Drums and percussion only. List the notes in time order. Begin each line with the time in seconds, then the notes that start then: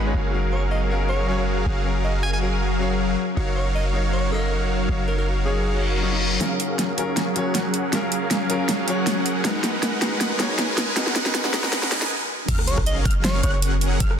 6.41 snare, closed hi-hat
6.60 closed hi-hat
6.79 snare, closed hi-hat
6.98 closed hi-hat
7.17 snare, closed hi-hat
7.36 closed hi-hat
7.55 snare, closed hi-hat
7.74 closed hi-hat
7.93 snare, closed hi-hat
8.12 closed hi-hat
8.31 snare, closed hi-hat
8.50 closed hi-hat
8.69 snare, closed hi-hat
8.88 closed hi-hat
9.07 snare, closed hi-hat
9.26 closed hi-hat
9.45 snare, closed hi-hat
9.64 snare, closed hi-hat
9.83 snare, closed hi-hat
10.02 snare, closed hi-hat
10.21 snare, closed hi-hat
10.40 snare, closed hi-hat
10.59 snare, closed hi-hat
10.78 snare, closed hi-hat
10.96 snare, closed hi-hat
11.07 snare
11.16 snare, closed hi-hat
11.26 snare
11.35 snare, closed hi-hat
11.45 snare
11.54 snare, closed hi-hat
11.64 snare
11.73 snare, closed hi-hat
11.83 snare
11.92 snare, closed hi-hat
12.02 snare
12.48 kick, closed hi-hat, crash
12.59 cross-stick
12.68 closed hi-hat
12.78 kick, cross-stick
12.86 closed hi-hat
13.05 kick, closed hi-hat
13.11 closed hi-hat
13.24 snare, closed hi-hat
13.43 closed hi-hat
13.62 closed hi-hat
13.81 closed hi-hat
14.00 kick, closed hi-hat
14.11 cross-stick